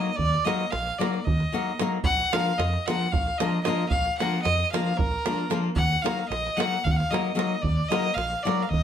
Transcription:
0.00 0.10 F#4 medium
0.00 0.10 A#4 medium
0.00 0.17 D#5 medium
0.16 0.35 D#2 loud
0.16 0.46 D5 loud
0.16 davul low medium
0.34 davul high soft
0.45 0.64 F#3 medium
0.45 0.64 A#3 medium
0.45 0.64 D#4 medium
0.45 0.65 F#4 medium
0.45 0.65 A#4 medium
0.45 0.72 D#5 loud
0.45 davul high medium
0.60 davul high soft
0.70 0.90 A#1 medium
0.70 1.00 F5 loud
0.70 davul high medium
0.87 davul high soft
0.99 1.18 F#3 medium
0.99 1.18 A#3 medium
0.99 1.18 D#4 medium
0.99 1.19 F#4 medium
0.99 1.19 A#4 medium
0.99 1.26 D5 medium
0.99 davul high medium
1.14 davul high soft
1.24 1.43 D#2 loud
1.24 1.84 D#5 medium
1.24 davul low loud
1.40 davul high soft
1.52 1.71 F#3 medium
1.52 1.71 A#3 medium
1.52 1.71 D#4 medium
1.52 1.72 F#4 medium
1.52 1.72 A#4 medium
1.79 1.97 F#3 medium
1.79 1.97 A#3 medium
1.79 1.98 D#4 medium
1.79 1.98 F#4 medium
1.79 1.98 A#4 medium
1.79 davul high medium
2.04 2.22 A#1 loud
2.04 2.34 F#5 loud
2.04 davul low loud
2.19 davul high soft
2.32 2.51 F3 medium
2.32 2.51 A#3 medium
2.32 2.51 D4 medium
2.32 2.51 F4 medium
2.32 2.52 A#4 medium
2.32 2.59 F5 loud
2.32 davul high medium
2.46 davul high soft
2.58 2.76 F2 loud
2.58 2.88 D#5 medium
2.58 davul high medium
2.73 davul high soft
2.86 3.06 F3 medium
2.86 3.06 A#3 medium
2.86 3.06 D4 medium
2.86 3.06 F4 medium
2.86 3.06 A#4 medium
2.86 3.13 F#5 loud
2.86 davul high medium
3.01 davul high soft
3.12 3.29 A#1 loud
3.12 3.39 F5 loud
3.12 davul low loud
3.27 davul high soft
3.38 3.58 F3 medium
3.38 3.58 A#3 medium
3.38 3.58 D4 medium
3.38 3.58 F4 medium
3.38 3.59 A#4 medium
3.38 3.63 D#5 medium
3.38 davul high medium
3.63 3.83 F3 medium
3.63 3.84 A#3 medium
3.63 3.84 D4 medium
3.63 3.84 F4 medium
3.63 3.88 D#5 medium
3.63 davul high medium
3.68 3.84 A#4 medium
3.89 4.08 A#1 loud
3.89 4.16 F5 loud
3.89 davul low medium
4.06 davul high soft
4.17 4.38 F3 medium
4.17 4.38 A#3 medium
4.17 4.38 D4 medium
4.17 4.38 F4 medium
4.17 4.41 F#5 medium
4.17 davul high medium
4.22 4.39 A#4 medium
4.33 davul high soft
4.42 4.62 F2 medium
4.42 4.70 D#5 loud
4.42 davul high medium
4.60 davul high soft
4.72 4.91 F3 medium
4.72 4.91 A#3 medium
4.72 4.92 D4 medium
4.72 4.92 F4 medium
4.72 4.92 A#4 medium
4.72 4.98 F5 medium
4.72 davul high medium
4.86 davul high soft
4.97 5.15 A#1 loud
4.97 5.57 A#4 loud
4.97 davul low loud
5.12 davul high soft
5.26 5.44 F3 medium
5.26 5.44 A#3 medium
5.26 5.44 D4 medium
5.26 5.44 F4 medium
5.26 5.45 A#4 medium
5.26 davul high medium
5.39 davul high soft
5.50 5.69 F3 medium
5.50 5.69 A#3 medium
5.50 5.69 D4 medium
5.50 5.69 F4 medium
5.50 5.70 A#4 medium
5.50 davul high medium
5.64 davul high soft
5.75 5.94 D#2 loud
5.75 6.03 F#5 loud
5.75 davul low loud
5.92 davul high soft
6.02 6.23 F#3 medium
6.02 6.23 A#3 medium
6.02 6.23 D#4 medium
6.02 6.23 F#4 medium
6.02 6.23 A#4 medium
6.02 6.28 F5 loud
6.06 davul high medium
6.19 davul high soft
6.28 6.48 A#1 medium
6.28 6.58 D#5 loud
6.28 davul high medium
6.47 davul high soft
6.56 6.76 F#3 medium
6.56 6.77 A#3 medium
6.56 6.77 D#4 medium
6.56 6.77 F#4 medium
6.56 6.77 A#4 medium
6.56 6.85 F#5 loud
6.60 davul high medium
6.73 davul high soft
6.84 7.01 D#2 loud
6.84 6.92 F5 medium
6.84 davul low loud
6.91 6.98 F#5 medium
6.96 7.12 F5 loud
7.00 davul high soft
7.10 7.29 F#3 medium
7.10 7.30 A#3 medium
7.10 7.30 D#4 medium
7.10 7.30 F#4 medium
7.10 7.30 A#4 medium
7.10 7.35 D#5 medium
7.10 davul high medium
7.35 7.54 F#3 medium
7.35 7.54 A#3 medium
7.35 7.54 D#4 medium
7.35 7.55 F#4 medium
7.35 7.55 A#4 medium
7.35 7.63 D#5 medium
7.39 davul high medium
7.62 7.80 D#2 medium
7.62 7.90 D5 loud
7.62 davul low medium
7.88 8.09 F#3 medium
7.88 8.10 A#3 medium
7.88 8.10 D#4 medium
7.88 8.10 F#4 medium
7.88 8.16 D#5 loud
7.88 davul high medium
7.92 8.10 A#4 medium
8.05 davul high soft
8.14 8.34 A#1 loud
8.14 8.44 F5 loud
8.14 davul high medium
8.32 davul high soft
8.43 8.64 F#3 medium
8.43 8.64 A#3 medium
8.43 8.64 D#4 medium
8.43 8.64 F#4 medium
8.43 8.64 D5 medium
8.47 8.65 A#4 medium
8.47 davul high medium
8.60 8.70 F5 medium
8.60 davul high soft
8.69 8.83 D#2 loud
8.69 8.83 D#5 loud
8.74 davul low medium

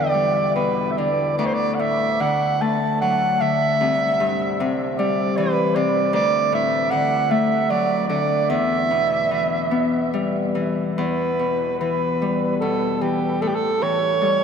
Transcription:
0.00 1.46 E2 medium
0.00 0.63 D3 medium
0.00 0.53 D5 medium
0.14 1.04 G3 soft
0.56 1.04 B2 soft
0.56 0.93 B4 medium
0.91 0.99 E5 medium
0.98 1.46 D3 soft
0.98 1.37 D5 medium
1.37 3.87 D2 medium
1.37 1.48 D5 medium
1.46 1.56 C5 medium
1.54 1.76 D5 medium
1.74 1.81 F#5 medium
1.79 2.27 A2 soft
1.79 2.22 E5 medium
2.20 3.40 D3 soft
2.20 2.63 F#5 medium
2.61 5.94 A3 soft
2.61 3.01 A5 medium
3.01 3.48 F#3 soft
3.01 3.43 F#5 medium
3.41 3.87 D3 soft
3.41 4.73 E5 medium
3.81 6.19 C2 medium
4.20 4.65 G2 soft
4.60 5.74 C3 medium
4.98 6.19 G3 medium
4.98 5.38 D5 medium
5.37 5.81 E3 medium
5.37 5.77 B4 medium
5.75 6.20 C3 medium
5.75 6.14 D5 medium
6.13 8.55 D2 medium
6.13 6.51 D5 loud
6.52 6.97 A2 soft
6.52 6.92 E5 medium
6.91 8.08 D3 medium
6.91 7.33 F#5 medium
7.31 10.64 A3 soft
7.31 7.72 E5 medium
7.70 8.14 F#3 soft
7.70 8.07 D5 medium
8.08 8.55 D3 medium
8.08 8.51 D5 medium
8.50 10.97 E2 medium
8.50 10.13 E5 medium
8.91 11.02 B2 soft
9.31 10.54 E3 soft
9.71 12.82 B3 soft
10.14 11.02 G3 soft
10.55 11.02 E3 soft
10.97 13.46 E2 medium
10.97 11.76 B4 medium
11.39 12.61 B2 soft
11.80 12.66 E3 soft
11.80 12.57 B4 medium
12.22 13.46 G3 soft
12.60 13.46 B2 soft
12.60 13.03 A4 medium
13.01 13.46 E3 soft
13.01 13.43 G4 medium
13.41 14.44 A2 medium
13.41 13.49 A4 medium
13.48 13.56 G4 medium
13.55 13.84 A4 medium
13.82 14.44 E3 soft
13.82 14.44 C#5 loud
14.21 14.44 G3 medium

